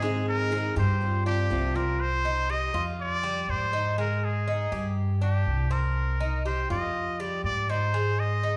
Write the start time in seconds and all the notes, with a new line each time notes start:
Already playing: G#2 G#4
0.02 D#3 G#3 C4 D#4 G#4
0.28 A#4
0.51 D#3 G#3 C4 D#4 G#4
0.76 G2 G4 C5, muted steel-string acoustic guitar stroke
1.00 F3 G3 C4 F4
1.25 G3 C4 D4 F4 G4
1.50 C2 C3 F3 G3 C4 F4
1.74 G3 C4 F4 A#4
2.01 C5
2.25 D#4
2.50 G4 D#5
2.74 F2 F4
3.00 D5
3.23 G3
3.48 G#2 C5
3.73 D#4
3.98 G#3 A#4
4.24 G#4
4.47 D#4
4.72 G2 G4
5.22 D4 G4
5.46 C2
5.71 C4 A#4
6.20 D#4
6.46 G4 C5
6.70 F2 F4 D#5
7.20 G3 D5
7.44 G#2 D5
7.69 D#4 C5
7.94 G#3
8.20 D#5
8.43 D#4